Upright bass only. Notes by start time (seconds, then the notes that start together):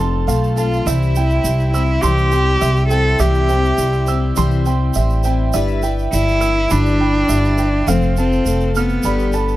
Already playing: F1
0.28 B1
0.86 C2
1.44 C2
2.03 C2
2.62 C2
3.20 C2
3.78 C2
4.38 C2
4.96 A1
5.54 G1
6.13 G1
6.72 G1
7.29 G1
7.88 F1
8.46 F1
9.04 G1